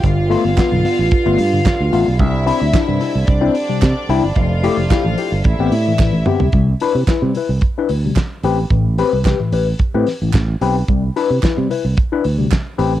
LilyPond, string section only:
\new Staff \with { instrumentName = "String section" } { \time 4/4 \key c \major \tempo 4 = 110 <f' f''>1 | <e' e''>2 <d' d''>2 | <f' f''>2 <e' e''>2 | r1 |
r1 | r1 | }